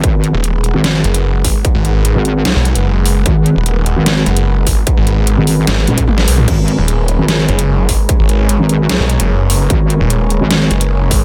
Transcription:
<<
  \new Staff \with { instrumentName = "Supersaw synth" } { \time 4/4 \key gis \minor \tempo 4 = 149 << { fis''1~ | fis''1~ | fis''1~ | fis''1 |
cis''1~ | cis''1~ | cis''1 | } \\ { <gis gis' ais' b'>1~ | <gis gis' ais' b'>1~ | <gis gis' ais' b'>1~ | <gis gis' ais' b'>1~ |
<gis gis' ais' b'>1~ | <gis gis' ais' b'>1~ | <gis gis' ais' b'>1 | } >> }
  \new Staff \with { instrumentName = "Detuned saw bass" } { \clef bass \time 4/4 \key gis \minor r8. dis,,4 r8. fis,,4 gis,,16 r16 | r16 gis,,4 r4 b,,8 fis,,4~ fis,,16 | r8. dis,,4 r8. fis,,4 gis,,16 r16 | r16 gis,,4 r8. gis,,8 r8 gis,,8 b,,8 |
r8. dis,,4 r8. fis,,4 gis,,16 r16 | r16 gis,,4 r4 b,,8 fis,,4~ fis,,16 | r8. dis,,4 r8. fis,,4 gis,,16 r16 | }
  \new Staff \with { instrumentName = "Wobble bass" } { \clef bass \time 4/4 \key gis \minor gis,,8. r4 gis,,8. r4. | r4 r16 gis,,8. b,,16 r4. r16 | gis,,8. r4 gis,,8. r4. | r4 r16 gis,,8. r8 dis,,8 r4 |
gis,,8. r4 gis,,8. r4. | r4 r16 gis,,8. b,,16 r4. r16 | gis,,8. r4 gis,,8. r4. | }
  \new DrumStaff \with { instrumentName = "Drums" } \drummode { \time 4/4 <hh bd>8 hh8 hh8 hh8 <hh sn>8 hh16 hh16 r8 <hho bd>8 | <hh bd>8 hh8 hh8 hh8 <hh sn>8 hh16 hh16 r8 hho8 | <hh bd>8 hh8 hh8 hh8 <hh sn>8 hh16 hh16 r8 <hho bd>8 | <hh bd>8 hh8 hh8 hho8 <hh sn>8 hh16 <hh bd>16 tommh16 sn16 hho16 toml16 |
<cymc hh bd>8 hh8 hh8 hh8 <hh sn>8 hh16 hh16 r8 <hho bd>8 | <hh bd>8 hh8 hh8 hh8 <hh sn>8 hh16 hh16 r8 hho8 | <hh bd>8 hh8 hh8 hh8 <hh sn>8 hh16 hh16 r8 <hho bd>8 | }
>>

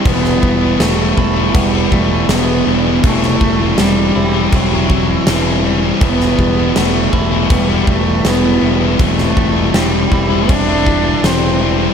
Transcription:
<<
  \new Staff \with { instrumentName = "Distorted electric guitar" } { \time 4/4 \key e \minor \tempo 4 = 80 <e g b e'>8. <g b e'>16 <e g b e'>8. <g b e'>8 <g b e'>16 <e g b e'>8 <e g b e'>8 <e g b e'>16 <g b e'>16 | <e g c' e'>8. <g c' e'>16 <e g c' e'>8. <g c' e'>8 <g c' e'>16 <e g c' e'>8 <e g c' e'>8 <e g c' e'>16 <g c' e'>16 | <e g b e'>8. <g b e'>16 <e g b e'>8. <g b e'>8 <g b e'>16 <e g b e'>8 <e g b e'>8 <e g b e'>16 <g b e'>16 | <e g c' e'>8. <g c' e'>16 <e g c' e'>8. <g c' e'>8 <g c' e'>16 <e g c' e'>8 <e g c' e'>8 <e g c' e'>16 <g c' e'>16 | }
  \new Staff \with { instrumentName = "Distorted electric guitar" } { \time 4/4 \key e \minor <e g b e'>8 <e g b e'>16 <g b e'>16 <e g b e'>16 <g b e'>16 <e g b e'>8. <g b e'>16 <e g b e'>16 <g b e'>16 <e g b e'>8 <e g b e'>16 <g b e'>16 | <e g c' e'>8 <e g c' e'>16 <g c' e'>16 <e g c' e'>16 <g c' e'>16 <e g c' e'>8. <g c' e'>16 <e g c' e'>16 <g c' e'>16 <e g c' e'>8 <e g c' e'>16 <g c' e'>16 | <e g b e'>8 <e g b e'>16 <g b e'>16 <e g b e'>16 <g b e'>16 <e g b e'>8. <g b e'>16 <e g b e'>16 <g b e'>16 <e g b e'>8 <e g b e'>16 <g b e'>16 | <e g c' e'>8 <e g c' e'>16 <g c' e'>16 <e g c' e'>16 <g c' e'>16 <e g c' e'>8. <g c' e'>16 <e g c' e'>16 <g c' e'>16 <e g c' e'>8 <e g c' e'>16 <g c' e'>16 | }
  \new Staff \with { instrumentName = "Cello" } { \time 4/4 \key e \minor b4 a4 g8 a8 b8. r16 | a4 g4 fis4 e8. r16 | b4 a4 g8 a8 b8. r16 | a4 g4 d'4 c'8. r16 | }
  \new Staff \with { instrumentName = "Clean electric guitar" } { \clef bass \time 4/4 \key e \minor e,8 g8 b8 e'8 b8 g8 e8 g8 | e8 g8 c'8 e'8 c'4 e8 g8 | e,8 g8 b8 e'8 b8 g8 e8 g8 | e8 g8 c'8 e'8 c'8 g8 e8 g8 | }
  \new Staff \with { instrumentName = "Fingered electric bass" } { \clef bass \time 4/4 \key e \minor e,,8 e,,8 e,,8 e,,8 e,,8 e,,8 e,,8 e,,8 | e,,8 e,,8 e,,8 e,,8 e,,4 e,,4 | e,,8 e,,8 e,,8 e,,8 e,,8 e,,8 e,,8 e,,8 | e,,8 e,,8 e,,8 e,,8 e,,4 e,,4 | }
  \new DrumStaff \with { instrumentName = "Drums" } \drummode { \time 4/4 <cymc bd>16 sn16 bd8 <cymc sn>8 bd8 <cymc bd>8 bd8 <cymc sn>4 | <cymc bd>16 sn16 bd8 <cymc sn>4 <cymc bd>8 bd8 <cymc sn>4 | <cymc bd>16 sn16 bd8 <cymc sn>8 bd8 <cymc bd>8 bd8 <cymc sn>4 | <cymc bd>16 sn16 bd8 <cymc sn>8 bd8 <cymc bd>8 bd8 <cymc sn>4 | }
>>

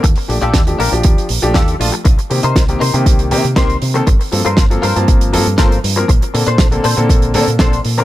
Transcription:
<<
  \new Staff \with { instrumentName = "Clean electric guitar" } { \time 4/4 \key c \dorian \tempo 4 = 119 r8. <d' f' g' a'>16 r8 <d' f' g' bes'>16 r4 r16 <d' f' g' a'>8 r8 | r8. <ees' bes' c''>16 r8 <ees' bes' c''>16 r4 r16 <ees' bes' c''>8 r8 | r8. <f' a' bes' c''>16 r8 <f' a' bes' c''>16 r4 r16 <f' a' bes' c''>8 r8 | r8. <d' a' c''>16 r8 <d' a' c''>16 r4 r16 <d' a' c''>8 r8 | }
  \new Staff \with { instrumentName = "Grand piano" } { \time 4/4 \key c \dorian r8 <f a d' g'>16 r8 <f a d' g'>16 r16 <f d' g'>8. r16 <f a d' g'>16 r8 <f a d' f'>16 r16 | r8 <ees bes c' g'>16 r8 <ees bes c' g'>16 r16 <ees bes c' g'>8. <ees bes c' g'>16 r16 <ees bes c' g'>16 r8 <ees bes c' a'>16 | r8 <f bes c' a'>16 r8 <f bes c' a'>16 r16 <f bes c' a''>8. <f bes c' a'>16 r16 <f bes c' a'>16 r8 <f bes c' bes'>16 | r8 <d bes c' a'>16 r8 <d bes c' a'>16 r16 <d bes c' a'>8. <d bes c' a'>16 r16 <d bes c' a'>16 r8 <d bes c' bes'>16 | }
  \new Staff \with { instrumentName = "Fingered electric bass" } { \clef bass \time 4/4 \key c \dorian ees,16 r16 bes,,16 bes,,16 r8 bes,,16 bes,,16 ees,16 r16 bes,,16 bes,,16 ees,16 r16 bes,,16 r16 | c,16 r16 c16 c16 c,16 r16 c16 c16 c,8 c16 c16 c,16 r16 c16 r16 | g,,16 r16 g,16 g,16 g,,16 r16 g,16 g,16 g,,8 g,16 g,16 g,,16 r16 g,16 r16 | bes,,16 r16 bes,16 bes,16 bes,,16 r16 bes,16 bes,16 bes,,8 bes,16 bes,16 bes,,16 r16 bes,16 r16 | }
  \new DrumStaff \with { instrumentName = "Drums" } \drummode { \time 4/4 <hh bd>16 hho16 hho16 hh16 <hh bd sn>16 hh16 hho16 hh16 <hh bd>16 hh16 hho16 hh16 <hh bd sn>16 hh16 hho16 hh16 | <hh bd>16 hh16 hho16 hh16 <hh bd sn>16 hh16 hho16 hh16 <hh bd>16 hh16 hho16 hh16 <hh bd sn>16 hh16 hho16 hh16 | <hh bd>16 hho16 hho16 hh16 <hh bd sn>16 hh16 hho16 hh16 <hh bd>16 hh16 hho16 hh16 <hh bd sn>16 hh16 hho16 hh16 | <hh bd>16 hh16 hho16 hh16 <hh bd sn>16 hh16 hho16 hh16 <hh bd>16 hh16 hho16 hh16 <hh bd sn>16 hh16 hho16 hh16 | }
>>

